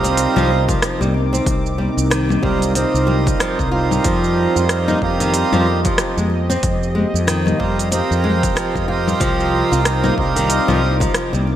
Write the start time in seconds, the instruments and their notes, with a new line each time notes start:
Already playing: fretless electric bass C2, analog synth pad C3 C4 D#4 G4 A#4, harmonium G3 C4 F4 A#4 D#5
0.03 nylon-string guitar C4, open hi-hat, shaker
0.17 open hi-hat, shaker
0.36 fretless electric bass C2, nylon-string guitar F3, high bongo, low conga, shaker
0.50 high conga
0.56 analog synth pad D6
0.67 nylon-string guitar F3, harmonium G3 C4 F4 A#4 D#5, kick, open hi-hat, high bongo, low conga, shaker
0.82 cross-stick, open hi-hat, shaker
1.01 fretless electric bass C2, nylon-string guitar G3, high conga, shaker
1.14 high bongo
1.33 nylon-string guitar C4, shaker
1.46 fretless electric bass C2, kick, open hi-hat, shaker
1.66 shaker
1.78 nylon-string guitar G3, high conga
1.97 fretless electric bass C2, shaker
2.10 nylon-string guitar D#3, cross-stick, open hi-hat, shaker
2.29 high conga, low conga, shaker
2.42 fretless electric bass C2, harmonium G3 C4 F4 A#4 D#5, nylon-string guitar G3, kick, high bongo, low conga
2.62 open hi-hat, high conga, shaker
2.73 harmonium G3 C4 F4 A#4 D#5, nylon-string guitar C4, open hi-hat, high bongo, shaker
2.94 fretless electric bass C2, shaker
3.07 nylon-string guitar G3, low conga
3.26 kick, open hi-hat, high bongo, shaker
3.40 nylon-string guitar F3, cross-stick, open hi-hat, shaker
3.59 fretless electric bass C2, kick, shaker
3.70 harmonium G3 C4 F4 A#4 D#5, nylon-string guitar F4, high bongo
3.91 low conga, shaker
4.04 fretless electric bass F2, nylon-string guitar F3, analog synth pad F3, kick, open hi-hat, shaker
4.24 shaker
4.56 fretless electric bass F2, nylon-string guitar F4, shaker
4.61 analog synth pad G4
4.69 cross-stick, open hi-hat, shaker
4.88 nylon-string guitar D#4, high conga, low conga, shaker
4.99 fretless electric bass F2, harmonium G3 C4 F4 A#4, kick
5.03 harmonium D#5
5.20 nylon-string guitar D#3, open hi-hat, high conga, shaker
5.34 open hi-hat, shaker
5.53 fretless electric bass F2, nylon-string guitar F3, high bongo, low conga, shaker
5.63 analog synth pad D#5, high conga
5.84 nylon-string guitar F3, harmonium G3 C4 F4 A#4 D#5, kick, open hi-hat, high bongo, low conga, shaker
5.98 cross-stick, open hi-hat, shaker
6.17 fretless electric bass F2, nylon-string guitar G#3, high conga, shaker
6.30 high bongo
6.50 nylon-string guitar C4, shaker
6.63 fretless electric bass F2, kick, open hi-hat, shaker
6.83 shaker
6.95 nylon-string guitar G#3, high conga
7.14 fretless electric bass F2, shaker
7.27 nylon-string guitar D#3, cross-stick, open hi-hat, shaker
7.46 high conga, low conga, shaker
7.58 fretless electric bass F2, harmonium G3 C4 F4 A#4 D#5, nylon-string guitar G3, kick
7.79 open hi-hat, shaker
7.90 harmonium C4 F4 G4 A#4 D#5, nylon-string guitar C4, open hi-hat, high bongo, shaker
8.11 fretless electric bass F2, shaker
8.24 nylon-string guitar G#3, low conga
8.43 kick, open hi-hat, high bongo, shaker
8.56 nylon-string guitar F3, cross-stick, open hi-hat, shaker
8.75 fretless electric bass F2, kick, shaker
8.87 harmonium C4 F4 G4 A#4, nylon-string guitar F4, high bongo
8.91 harmonium D#5
9.08 low conga, shaker
9.20 fretless electric bass C2, analog synth pad C3, nylon-string guitar F3, kick, open hi-hat, shaker
9.40 shaker
9.69 fretless electric bass C2, nylon-string guitar F4, analog synth pad D6, shaker
9.80 analog synth pad D#4 A#4
9.85 cross-stick, open hi-hat, shaker
10.04 nylon-string guitar D#4, high conga, low conga, shaker
10.15 fretless electric bass C2, harmonium G3 C4 F4 A#4 D#5, kick
10.36 nylon-string guitar D#3, open hi-hat, high conga, shaker
10.50 open hi-hat, shaker
10.68 fretless electric bass C2, nylon-string guitar F3, high bongo, low conga, shaker
10.83 high conga
11.00 nylon-string guitar F3, harmonium G3 C4 F4 A#4 D#5, kick, open hi-hat, high bongo, low conga, shaker
11.14 cross-stick, open hi-hat, shaker
11.33 fretless electric bass C2, nylon-string guitar G3, high conga, shaker
11.47 high bongo